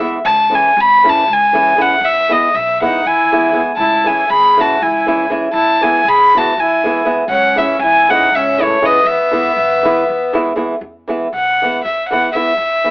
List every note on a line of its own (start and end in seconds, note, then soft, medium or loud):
0.00 0.17 E3 medium
0.00 0.18 G#3 medium
0.00 0.18 B3 medium
0.00 0.18 E4 medium
0.25 0.56 C#2 loud
0.25 0.56 A5 loud
0.50 0.69 E3 medium
0.50 0.70 G#3 medium
0.50 0.70 C#4 medium
0.50 0.70 E4 medium
0.55 0.82 G#5 loud
0.77 1.08 G#1 loud
0.77 1.11 B5 loud
1.04 1.23 E3 medium
1.04 1.23 G#3 medium
1.04 1.23 C#4 medium
1.04 1.24 E4 medium
1.09 1.34 A5 loud
1.27 1.71 C#2 medium
1.33 1.83 G#5 loud
1.53 1.72 E3 medium
1.53 1.72 G#3 medium
1.53 1.72 C#4 medium
1.53 1.73 E4 medium
1.76 1.94 E3 medium
1.76 1.95 G#3 medium
1.76 1.95 C#4 medium
1.76 1.95 E4 medium
1.81 2.06 F#5 loud
2.01 2.32 E2 loud
2.01 2.33 E5 loud
2.29 2.47 E3 medium
2.29 2.48 G#3 medium
2.29 2.48 B3 medium
2.29 2.48 E4 medium
2.29 2.56 D#5 medium
2.54 2.86 B1 medium
2.54 2.82 E5 loud
2.81 3.00 E3 medium
2.81 3.00 G#3 medium
2.81 3.00 B3 medium
2.81 3.05 D#4 medium
2.81 3.00 E4 medium
2.81 3.08 F#5 medium
3.06 3.48 E2 medium
3.06 3.61 E4 medium
3.06 3.61 G#5 medium
3.32 3.49 E3 medium
3.32 3.49 G#3 medium
3.32 3.50 B3 medium
3.32 3.50 E4 medium
3.52 3.71 E3 medium
3.52 3.71 G#3 medium
3.52 3.71 B3 medium
3.52 3.72 E4 medium
3.77 4.09 C#2 loud
3.77 4.05 E4 loud
3.77 4.08 A5 loud
4.04 4.23 E3 medium
4.04 4.24 G#3 medium
4.04 4.24 C#4 soft
4.04 4.24 E4 medium
4.04 4.30 E4 medium
4.04 4.31 G#5 medium
4.30 4.61 G#1 medium
4.30 4.59 G#4 medium
4.30 4.62 B5 loud
4.57 4.76 E3 medium
4.57 4.76 G#3 medium
4.57 4.76 C#4 medium
4.57 4.77 E4 medium
4.57 4.82 F#4 medium
4.57 4.84 A5 medium
4.82 5.25 C#2 medium
4.82 5.31 E4 medium
4.82 5.31 G#5 medium
5.06 5.25 E3 medium
5.06 5.25 G#3 medium
5.06 5.25 C#4 medium
5.06 5.25 E4 medium
5.30 5.47 E3 medium
5.30 5.47 G#3 medium
5.30 5.48 C#4 medium
5.30 5.48 E4 medium
5.53 5.85 E2 medium
5.53 5.80 E4 medium
5.53 5.84 A5 medium
5.81 6.00 E3 medium
5.81 6.00 G#3 medium
5.81 6.00 B3 medium
5.81 6.06 E4 medium
5.81 6.01 E4 medium
5.81 6.10 G#5 loud
6.05 6.37 B1 medium
6.05 6.35 G#4 medium
6.05 6.39 B5 loud
6.34 6.52 E3 medium
6.34 6.53 G#3 medium
6.34 6.53 B3 medium
6.34 6.53 E4 medium
6.34 6.59 F#4 medium
6.34 6.61 A5 loud
6.57 7.00 E2 medium
6.57 7.08 E4 medium
6.57 7.08 G#5 medium
6.84 7.01 E3 medium
6.84 7.02 G#3 medium
6.84 7.02 B3 medium
6.84 7.02 E4 medium
7.05 7.23 E3 medium
7.05 7.23 G#3 medium
7.05 7.23 B3 medium
7.05 7.24 E4 medium
7.28 7.60 C#2 loud
7.28 7.57 C#4 medium
7.28 7.59 F#5 loud
7.56 7.75 E3 medium
7.56 7.75 G#3 medium
7.56 7.76 C#4 medium
7.56 7.76 E4 medium
7.56 7.81 E5 medium
7.60 7.82 C#4 medium
7.79 8.11 G#1 loud
7.79 8.09 E4 medium
7.79 8.11 G#5 loud
8.09 8.28 E3 medium
8.09 8.28 G#3 medium
8.09 8.28 C#4 medium
8.09 8.35 D#4 medium
8.09 8.29 E4 medium
8.09 8.36 F#5 loud
8.32 8.75 C#2 medium
8.32 8.61 C#4 medium
8.32 8.63 E5 medium
8.58 8.76 E3 medium
8.58 8.77 G#3 medium
8.58 8.77 C#4 medium
8.58 8.78 E4 medium
8.58 8.87 C#5 loud
8.63 8.84 A3 medium
8.82 8.99 E3 medium
8.82 8.99 G#3 medium
8.82 9.05 B3 medium
8.82 9.00 C#4 medium
8.82 9.00 E4 medium
8.82 9.07 D#5 loud
9.04 9.36 E2 medium
9.04 10.37 B3 medium
9.04 10.37 E5 medium
9.31 9.50 E3 medium
9.31 9.51 G#3 medium
9.31 9.51 B3 medium
9.31 9.51 E4 medium
9.56 9.88 B1 medium
9.83 10.02 E3 medium
9.83 10.03 G#3 medium
9.83 10.03 B3 medium
9.83 10.03 E4 medium
10.09 10.52 E2 medium
10.33 10.52 E3 medium
10.33 10.52 G#3 medium
10.33 10.53 B3 medium
10.33 10.52 E4 medium
10.56 10.74 E3 medium
10.56 10.74 G#3 medium
10.56 10.75 B3 medium
10.56 10.75 E4 medium
10.81 11.12 E2 medium
11.08 11.26 E3 medium
11.08 11.27 G#3 medium
11.08 11.27 B3 medium
11.08 11.27 E4 medium
11.33 11.64 B1 medium
11.33 11.83 F#5 medium
11.62 11.80 E3 medium
11.62 11.80 G#3 medium
11.62 11.81 B3 soft
11.62 11.81 E4 medium
11.85 12.28 E2 medium
11.85 12.09 E5 medium
12.09 12.28 E3 medium
12.09 12.29 G#3 medium
12.09 12.29 B3 medium
12.09 12.29 E4 medium
12.09 12.31 F#5 medium
12.32 12.51 E3 medium
12.32 12.52 G#3 soft
12.32 12.52 B3 medium
12.32 12.91 E5 loud
12.36 12.52 E4 medium
12.57 12.88 E2 medium
12.84 12.91 E3 soft
12.84 12.91 G#3 soft
12.84 12.91 B3 soft
12.84 12.91 E4 medium